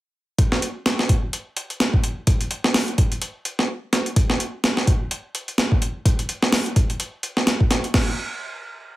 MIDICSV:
0, 0, Header, 1, 2, 480
1, 0, Start_track
1, 0, Tempo, 472441
1, 387, Time_signature, 4, 2, 24, 8
1, 9108, End_track
2, 0, Start_track
2, 0, Title_t, "Drums"
2, 391, Note_on_c, 9, 36, 110
2, 391, Note_on_c, 9, 42, 86
2, 493, Note_off_c, 9, 36, 0
2, 493, Note_off_c, 9, 42, 0
2, 528, Note_on_c, 9, 38, 47
2, 630, Note_off_c, 9, 38, 0
2, 633, Note_on_c, 9, 42, 72
2, 735, Note_off_c, 9, 42, 0
2, 872, Note_on_c, 9, 38, 121
2, 872, Note_on_c, 9, 42, 88
2, 974, Note_off_c, 9, 38, 0
2, 974, Note_off_c, 9, 42, 0
2, 1008, Note_on_c, 9, 38, 60
2, 1110, Note_off_c, 9, 38, 0
2, 1110, Note_on_c, 9, 36, 99
2, 1110, Note_on_c, 9, 42, 74
2, 1211, Note_off_c, 9, 42, 0
2, 1212, Note_off_c, 9, 36, 0
2, 1352, Note_on_c, 9, 42, 81
2, 1454, Note_off_c, 9, 42, 0
2, 1591, Note_on_c, 9, 42, 72
2, 1692, Note_off_c, 9, 42, 0
2, 1729, Note_on_c, 9, 42, 45
2, 1830, Note_off_c, 9, 42, 0
2, 1831, Note_on_c, 9, 38, 113
2, 1831, Note_on_c, 9, 42, 86
2, 1932, Note_off_c, 9, 38, 0
2, 1932, Note_off_c, 9, 42, 0
2, 1966, Note_on_c, 9, 36, 101
2, 2068, Note_off_c, 9, 36, 0
2, 2068, Note_on_c, 9, 42, 72
2, 2170, Note_off_c, 9, 42, 0
2, 2307, Note_on_c, 9, 42, 91
2, 2309, Note_on_c, 9, 36, 112
2, 2408, Note_off_c, 9, 42, 0
2, 2410, Note_off_c, 9, 36, 0
2, 2444, Note_on_c, 9, 42, 48
2, 2546, Note_off_c, 9, 42, 0
2, 2547, Note_on_c, 9, 42, 74
2, 2648, Note_off_c, 9, 42, 0
2, 2686, Note_on_c, 9, 38, 57
2, 2787, Note_off_c, 9, 38, 0
2, 2788, Note_on_c, 9, 38, 115
2, 2788, Note_on_c, 9, 46, 82
2, 2889, Note_off_c, 9, 38, 0
2, 2889, Note_off_c, 9, 46, 0
2, 2926, Note_on_c, 9, 42, 44
2, 3028, Note_off_c, 9, 42, 0
2, 3028, Note_on_c, 9, 42, 73
2, 3029, Note_on_c, 9, 36, 94
2, 3130, Note_off_c, 9, 42, 0
2, 3131, Note_off_c, 9, 36, 0
2, 3167, Note_on_c, 9, 42, 47
2, 3267, Note_off_c, 9, 42, 0
2, 3267, Note_on_c, 9, 42, 84
2, 3369, Note_off_c, 9, 42, 0
2, 3508, Note_on_c, 9, 42, 72
2, 3609, Note_off_c, 9, 42, 0
2, 3647, Note_on_c, 9, 38, 44
2, 3748, Note_off_c, 9, 38, 0
2, 3990, Note_on_c, 9, 38, 57
2, 3990, Note_on_c, 9, 42, 75
2, 4092, Note_off_c, 9, 38, 0
2, 4092, Note_off_c, 9, 42, 0
2, 4127, Note_on_c, 9, 42, 47
2, 4228, Note_off_c, 9, 42, 0
2, 4230, Note_on_c, 9, 42, 90
2, 4231, Note_on_c, 9, 36, 114
2, 4332, Note_off_c, 9, 36, 0
2, 4332, Note_off_c, 9, 42, 0
2, 4366, Note_on_c, 9, 38, 48
2, 4467, Note_off_c, 9, 38, 0
2, 4471, Note_on_c, 9, 42, 73
2, 4573, Note_off_c, 9, 42, 0
2, 4712, Note_on_c, 9, 38, 123
2, 4712, Note_on_c, 9, 42, 86
2, 4814, Note_off_c, 9, 38, 0
2, 4814, Note_off_c, 9, 42, 0
2, 4848, Note_on_c, 9, 38, 56
2, 4949, Note_off_c, 9, 38, 0
2, 4952, Note_on_c, 9, 36, 102
2, 4952, Note_on_c, 9, 42, 70
2, 5053, Note_off_c, 9, 36, 0
2, 5054, Note_off_c, 9, 42, 0
2, 5192, Note_on_c, 9, 42, 80
2, 5294, Note_off_c, 9, 42, 0
2, 5433, Note_on_c, 9, 42, 71
2, 5534, Note_off_c, 9, 42, 0
2, 5569, Note_on_c, 9, 42, 45
2, 5670, Note_off_c, 9, 42, 0
2, 5670, Note_on_c, 9, 38, 123
2, 5670, Note_on_c, 9, 42, 89
2, 5772, Note_off_c, 9, 38, 0
2, 5772, Note_off_c, 9, 42, 0
2, 5808, Note_on_c, 9, 36, 96
2, 5910, Note_off_c, 9, 36, 0
2, 5911, Note_on_c, 9, 42, 72
2, 6013, Note_off_c, 9, 42, 0
2, 6152, Note_on_c, 9, 36, 113
2, 6153, Note_on_c, 9, 42, 87
2, 6253, Note_off_c, 9, 36, 0
2, 6255, Note_off_c, 9, 42, 0
2, 6289, Note_on_c, 9, 42, 49
2, 6390, Note_off_c, 9, 42, 0
2, 6390, Note_on_c, 9, 42, 72
2, 6491, Note_off_c, 9, 42, 0
2, 6528, Note_on_c, 9, 38, 58
2, 6629, Note_off_c, 9, 38, 0
2, 6629, Note_on_c, 9, 38, 122
2, 6629, Note_on_c, 9, 46, 85
2, 6731, Note_off_c, 9, 38, 0
2, 6731, Note_off_c, 9, 46, 0
2, 6768, Note_on_c, 9, 42, 46
2, 6869, Note_off_c, 9, 42, 0
2, 6869, Note_on_c, 9, 42, 71
2, 6870, Note_on_c, 9, 36, 99
2, 6971, Note_off_c, 9, 42, 0
2, 6972, Note_off_c, 9, 36, 0
2, 7008, Note_on_c, 9, 42, 45
2, 7109, Note_off_c, 9, 42, 0
2, 7109, Note_on_c, 9, 42, 83
2, 7211, Note_off_c, 9, 42, 0
2, 7348, Note_on_c, 9, 42, 69
2, 7449, Note_off_c, 9, 42, 0
2, 7486, Note_on_c, 9, 38, 43
2, 7588, Note_off_c, 9, 38, 0
2, 7589, Note_on_c, 9, 38, 106
2, 7589, Note_on_c, 9, 42, 81
2, 7691, Note_off_c, 9, 38, 0
2, 7691, Note_off_c, 9, 42, 0
2, 7727, Note_on_c, 9, 36, 96
2, 7828, Note_off_c, 9, 36, 0
2, 7829, Note_on_c, 9, 38, 59
2, 7829, Note_on_c, 9, 42, 73
2, 7931, Note_off_c, 9, 38, 0
2, 7931, Note_off_c, 9, 42, 0
2, 7966, Note_on_c, 9, 42, 44
2, 8067, Note_on_c, 9, 38, 112
2, 8067, Note_on_c, 9, 49, 88
2, 8068, Note_off_c, 9, 42, 0
2, 8070, Note_on_c, 9, 36, 106
2, 8169, Note_off_c, 9, 38, 0
2, 8169, Note_off_c, 9, 49, 0
2, 8171, Note_off_c, 9, 36, 0
2, 9108, End_track
0, 0, End_of_file